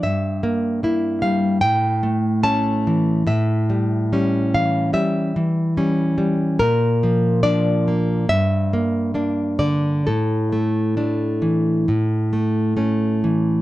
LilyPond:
\new Staff \with { instrumentName = "Nylon-string guitar" } { \time 4/4 \key a \phrygian \tempo 4 = 71 << { e''4. f''8 g''4 a''4 | e''4. f''8 e''4 r4 | bes'4 d''4 e''4. d''8 | a'2.~ a'8 r8 | } \\ { g,8 bes8 <bes e'>8 g8 a,8 a8 <a cis'>8 e8 | a,8 g8 <g cis'>8 e8 g8 e8 <g cis'>8 g8 | bes,8 f8 <f d'>8 bes8 g,8 bes8 <bes d'>8 d8 | a,8 a8 <a d'>8 e8 a,8 a8 <a cis'>8 e8 | } >> }